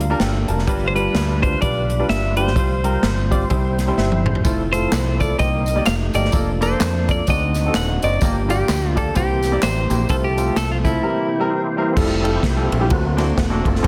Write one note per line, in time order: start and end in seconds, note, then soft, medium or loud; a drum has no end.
0.00 0.13 D2 medium
0.00 0.63 G3 medium
0.00 0.63 A#3 medium
0.00 0.63 D4 medium
0.00 0.63 F4 medium
0.00 0.19 F5 medium
0.00 closed hi-hat medium
0.10 0.29 G3 medium
0.10 0.29 D4 medium
0.10 0.30 F4 medium
0.10 0.20 A#4 medium
0.20 0.44 G1 medium
0.20 0.47 A4 medium
0.20 0.46 G5 medium
0.20 snare loud
0.20 closed hi-hat medium
0.48 0.68 F1 medium
0.48 0.93 A#4 medium
0.48 0.66 A5 medium
0.48 closed hi-hat medium
0.59 snare soft
0.67 1.08 G1 medium
0.67 1.39 G2 medium
0.67 0.83 G3 medium
0.67 2.53 G3 medium
0.67 0.83 D4 medium
0.67 2.53 D4 medium
0.67 0.83 F4 medium
0.67 2.53 F4 medium
0.67 0.75 A#4 medium
0.67 0.83 B4 medium
0.67 kick loud
0.67 closed hi-hat loud
0.75 2.56 B4 medium
0.88 0.95 C5 medium
0.95 1.17 G3 medium
0.95 1.18 D4 medium
0.95 1.18 F4 medium
0.95 1.42 B4 medium
0.95 1.18 B4 medium
0.95 closed hi-hat medium
1.14 1.55 D2 medium
1.14 snare loud
1.14 closed hi-hat medium
1.42 1.53 G3 medium
1.42 1.53 D4 medium
1.42 1.53 F4 medium
1.42 1.53 B4 medium
1.42 1.61 C5 medium
1.42 kick medium
1.42 closed hi-hat medium
1.61 2.02 B1 medium
1.61 1.85 G3 medium
1.61 1.85 D4 medium
1.61 1.85 F4 medium
1.61 1.85 B4 medium
1.61 2.09 D5 loud
1.61 kick loud
1.61 closed hi-hat medium
1.90 closed hi-hat medium
1.99 2.18 G3 medium
1.99 2.19 D4 medium
1.99 2.18 F4 medium
1.99 2.19 B4 medium
2.09 2.56 G1 medium
2.09 2.37 E5 medium
2.09 snare loud
2.09 closed hi-hat medium
2.37 2.48 G3 medium
2.37 2.48 D4 medium
2.37 2.48 F4 medium
2.37 2.48 G4 medium
2.37 3.74 C5 medium
2.37 closed hi-hat medium
2.47 snare soft
2.55 2.96 C2 loud
2.55 3.27 C3 medium
2.55 2.71 G3 medium
2.55 3.49 G3 medium
2.55 2.71 C4 medium
2.55 3.49 C4 medium
2.55 2.72 F4 medium
2.55 3.49 F4 soft
2.55 2.72 C5 medium
2.55 3.49 C5 medium
2.55 kick loud
2.55 closed hi-hat loud
2.84 3.06 G3 medium
2.84 3.06 C4 medium
2.84 3.07 F4 medium
2.84 3.07 A#4 medium
2.84 closed hi-hat medium
3.03 3.43 G1 medium
3.03 snare loud
3.03 closed hi-hat medium
3.31 3.42 G3 medium
3.31 3.42 C4 medium
3.31 3.42 F4 medium
3.31 3.42 D5 medium
3.31 kick medium
3.31 closed hi-hat medium
3.50 3.91 C2 medium
3.50 4.21 C3 medium
3.50 3.74 G3 medium
3.50 4.43 G3 medium
3.50 3.74 C4 medium
3.50 4.43 C4 medium
3.50 3.57 D#4 soft
3.50 3.74 E4 medium
3.50 4.43 C5 medium
3.50 3.74 C5 medium
3.50 kick medium
3.50 closed hi-hat medium
3.56 4.44 E4 medium
3.79 snare soft
3.79 closed hi-hat medium
3.88 4.07 G3 medium
3.88 4.07 C4 medium
3.88 4.07 E4 medium
3.88 3.98 C5 medium
3.98 4.38 G1 medium
3.98 4.24 E5 medium
3.98 snare medium
4.12 high tom soft
4.26 4.44 C5 medium
4.26 mid tom medium
4.35 floor tom medium
4.44 4.85 F1 medium
4.44 5.37 F3 medium
4.44 4.60 A3 medium
4.44 5.37 C4 medium
4.44 4.60 E4 medium
4.44 5.37 E4 medium
4.44 4.60 F4 medium
4.44 5.37 A4 medium
4.44 4.60 C5 medium
4.44 kick loud
4.44 closed hi-hat loud
4.44 tambourine medium
4.73 4.95 A3 medium
4.73 4.95 E4 medium
4.73 4.95 F4 medium
4.73 4.95 A4 medium
4.73 5.16 C5 medium
4.73 closed hi-hat medium
4.73 tambourine soft
4.92 5.32 C2 medium
4.92 snare loud
4.92 clap loud
4.92 closed hi-hat medium
4.92 tambourine loud
5.19 5.30 A3 medium
5.19 5.30 E4 medium
5.19 5.30 F4 medium
5.19 5.31 A4 medium
5.19 5.39 D5 medium
5.19 kick medium
5.19 closed hi-hat medium
5.19 tambourine soft
5.39 5.79 C2 medium
5.39 5.83 C3 medium
5.39 5.86 G3 medium
5.39 5.62 A#3 medium
5.39 5.86 C4 soft
5.39 5.62 D#4 medium
5.39 5.85 D#4 soft
5.39 5.62 G4 medium
5.39 5.86 A#4 medium
5.39 5.63 C5 medium
5.39 5.86 D#5 medium
5.39 kick medium
5.39 closed hi-hat medium
5.39 tambourine medium
5.66 closed hi-hat medium
5.66 tambourine medium
5.76 5.86 A#3 medium
5.76 5.86 D#4 medium
5.76 5.86 G4 medium
5.76 5.86 D5 medium
5.85 6.10 F1 medium
5.85 6.32 F3 medium
5.85 6.33 A3 medium
5.85 6.33 D#4 medium
5.85 6.33 G4 medium
5.85 5.94 F5 medium
5.85 snare loud
5.85 clap loud
5.85 closed hi-hat medium
5.85 tambourine loud
6.14 6.30 G1 medium
6.14 6.24 A3 medium
6.14 6.25 F4 medium
6.14 6.25 G4 medium
6.14 6.32 D5 medium
6.14 6.25 D#5 medium
6.14 closed hi-hat medium
6.14 tambourine medium
6.25 snare soft
6.32 6.73 F1 medium
6.32 7.26 F3 medium
6.32 6.49 A#3 medium
6.32 7.25 A#3 medium
6.32 7.25 D4 medium
6.32 6.49 F4 medium
6.32 7.25 A4 medium
6.32 6.49 A4 medium
6.32 6.49 D5 medium
6.32 kick loud
6.32 closed hi-hat loud
6.32 tambourine medium
6.61 6.83 A#3 medium
6.61 6.84 F4 medium
6.61 6.84 A4 medium
6.61 7.10 C5 medium
6.61 6.84 D5 medium
6.61 closed hi-hat medium
6.61 tambourine medium
6.80 7.21 F2 medium
6.80 snare loud
6.80 clap loud
6.80 closed hi-hat medium
6.80 tambourine loud
7.08 7.19 A#3 medium
7.08 7.19 F4 medium
7.08 7.19 A4 medium
7.08 7.19 D5 medium
7.08 7.29 D5 medium
7.08 kick medium
7.08 closed hi-hat medium
7.08 tambourine soft
7.27 7.68 D2 medium
7.27 7.99 D3 medium
7.27 7.51 C4 medium
7.27 8.20 C4 medium
7.27 8.20 D4 medium
7.27 8.20 D#4 medium
7.27 7.51 D#4 medium
7.27 8.20 F#4 medium
7.27 7.51 F#4 medium
7.27 7.52 D5 medium
7.27 7.76 D#5 medium
7.27 kick medium
7.27 closed hi-hat medium
7.27 tambourine medium
7.54 snare soft
7.54 closed hi-hat medium
7.54 tambourine medium
7.66 7.84 C4 medium
7.66 7.84 D#4 medium
7.66 7.85 F#4 medium
7.66 7.85 A4 medium
7.74 7.98 D#1 medium
7.74 8.04 F#5 medium
7.74 snare loud
7.74 clap medium
7.74 closed hi-hat medium
7.74 tambourine loud
8.02 8.19 F#1 medium
8.02 8.13 C4 medium
8.02 8.13 D#4 medium
8.02 8.14 F#4 medium
8.02 8.21 D5 medium
8.02 8.14 D#5 medium
8.02 closed hi-hat medium
8.02 tambourine medium
8.21 8.62 G1 medium
8.21 8.93 G2 medium
8.21 9.14 F3 medium
8.21 8.37 A#3 medium
8.21 9.14 A#3 medium
8.21 9.14 D4 medium
8.21 8.37 F4 medium
8.21 8.38 G4 medium
8.21 9.14 G4 medium
8.21 8.38 D5 medium
8.21 kick loud
8.21 closed hi-hat loud
8.21 tambourine medium
8.49 8.71 A#3 medium
8.49 8.72 F4 medium
8.49 8.72 G4 medium
8.49 8.97 G4 medium
8.49 8.72 D5 medium
8.49 closed hi-hat medium
8.49 tambourine soft
8.69 9.09 D2 medium
8.69 snare loud
8.69 clap medium
8.69 closed hi-hat medium
8.69 tambourine medium
8.96 9.07 A#3 medium
8.96 9.07 F4 medium
8.96 9.07 G4 medium
8.96 9.16 A4 medium
8.96 9.07 D5 medium
8.96 kick medium
8.96 closed hi-hat medium
8.96 tambourine soft
9.14 9.56 C2 medium
9.14 9.86 C3 medium
9.14 10.08 E3 medium
9.14 9.38 A#3 medium
9.14 10.08 A#3 medium
9.14 10.08 C4 medium
9.14 9.39 E4 medium
9.14 9.39 G4 medium
9.14 10.08 G4 medium
9.14 9.60 G4 medium
9.14 9.39 C5 medium
9.14 kick loud
9.14 closed hi-hat medium
9.14 tambourine medium
9.43 snare soft
9.43 closed hi-hat medium
9.43 tambourine medium
9.52 9.72 A#3 medium
9.52 9.72 E4 medium
9.52 9.72 G4 medium
9.52 9.72 D5 medium
9.62 9.87 A1 medium
9.62 10.10 C5 medium
9.62 snare loud
9.62 clap loud
9.62 closed hi-hat medium
9.62 tambourine loud
9.90 10.07 A#1 medium
9.90 10.01 A#3 medium
9.90 10.01 E4 medium
9.90 10.01 G4 soft
9.90 10.01 C5 medium
9.90 closed hi-hat medium
9.90 tambourine medium
10.09 10.50 C2 loud
10.09 10.81 C3 medium
10.09 11.02 F3 medium
10.09 10.25 A3 medium
10.09 11.03 A3 medium
10.09 10.25 C4 medium
10.09 11.02 C4 soft
10.09 10.25 F4 medium
10.09 10.17 G4 soft
10.09 10.15 A4 medium
10.09 10.25 C5 medium
10.09 kick medium
10.09 closed hi-hat loud
10.09 tambourine medium
10.17 11.05 A4 medium
10.24 10.58 G4 medium
10.37 10.60 A3 medium
10.37 10.60 C4 medium
10.37 10.60 F4 medium
10.37 10.60 C5 medium
10.37 closed hi-hat medium
10.37 tambourine soft
10.56 10.96 C2 medium
10.56 10.70 A4 medium
10.56 snare loud
10.56 clap medium
10.56 closed hi-hat medium
10.56 tambourine medium
10.71 10.76 F4 medium
10.83 10.95 A3 medium
10.83 10.95 C4 medium
10.83 11.51 E4 medium
10.83 10.95 F4 medium
10.83 10.95 A4 medium
10.83 kick medium
10.83 closed hi-hat medium
10.83 tambourine soft
11.03 11.74 C3 medium
11.03 11.96 E3 medium
11.03 11.27 G3 medium
11.03 11.96 A#3 soft
11.03 11.27 C4 medium
11.03 11.96 C4 medium
11.03 11.27 E4 medium
11.03 11.49 G4 medium
11.03 11.27 A#4 medium
11.40 11.59 G3 medium
11.40 11.60 C4 medium
11.40 11.60 E4 medium
11.40 11.60 A#4 medium
11.50 11.94 E4 medium
11.50 11.94 G4 medium
11.50 11.99 C5 medium
11.77 11.88 G3 medium
11.77 11.88 C4 medium
11.77 11.89 E4 medium
11.77 11.89 A#4 medium
11.96 12.37 F1 medium
11.96 12.12 G3 medium
11.96 12.31 G3 medium
11.96 12.31 A3 soft
11.96 12.24 C4 medium
11.96 12.12 E4 medium
11.96 12.24 E4 medium
11.96 12.12 F4 medium
11.96 12.26 A4 medium
11.96 12.13 A4 medium
11.96 kick loud
11.96 crash loud
12.24 12.40 G3 medium
12.24 12.87 C4 medium
12.24 12.41 E4 medium
12.24 12.87 E4 medium
12.24 12.41 F4 medium
12.24 12.68 G4 medium
12.24 12.41 A4 medium
12.24 ride medium
12.43 12.67 C2 medium
12.43 kick medium
12.43 snare loud
12.43 ride medium
12.56 12.72 G3 medium
12.56 12.72 E4 medium
12.56 12.73 F4 medium
12.56 12.73 A4 medium
12.72 12.91 A#1 loud
12.72 ride medium
12.80 12.90 G3 medium
12.80 12.90 E4 medium
12.80 12.91 F4 medium
12.80 12.91 G4 medium
12.90 13.31 D2 medium
12.90 13.61 D3 medium
12.90 13.25 F#3 medium
12.90 13.81 A3 medium
12.90 13.25 A#3 medium
12.90 13.66 C4 medium
12.90 13.18 F#4 medium
12.90 kick loud
12.90 ride medium
13.17 13.34 A#3 medium
13.17 13.34 D4 medium
13.17 13.28 E4 medium
13.17 13.34 F#4 medium
13.17 13.35 C5 medium
13.17 snare soft
13.17 ride medium
13.38 13.62 E1 medium
13.38 13.67 F#4 medium
13.38 kick medium
13.38 snare loud
13.38 ride medium
13.50 13.71 A#3 medium
13.50 13.72 D4 medium
13.50 13.72 F#4 medium
13.50 13.72 A4 medium
13.65 13.82 F#1 medium
13.65 13.87 C4 medium
13.65 13.87 F4 medium
13.65 13.87 A4 medium
13.65 kick medium
13.65 ride medium
13.76 snare soft
13.83 13.87 G2 medium
13.83 13.87 A#3 medium
13.83 13.87 F4 medium
13.83 13.87 A4 medium
13.83 13.87 C5 medium
13.83 kick loud
13.83 ride medium